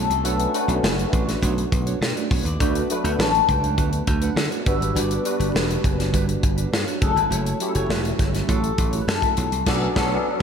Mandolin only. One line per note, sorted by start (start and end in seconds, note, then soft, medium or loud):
0.00 0.23 A4 medium
0.26 0.80 A4 medium
2.33 2.45 C#5 medium
2.47 3.07 D5 medium
3.05 3.10 F#5 medium
3.21 3.50 A5 medium
3.50 4.23 G5 loud
4.23 4.66 F#5 medium
4.66 4.94 E5 medium
4.97 6.69 D5 medium
7.02 7.16 A4 medium
7.17 7.72 B4 medium
7.75 8.45 C#5 medium
8.49 9.03 A4 medium
9.01 9.08 B4 medium
9.08 9.69 A4 medium
9.68 10.42 D5 medium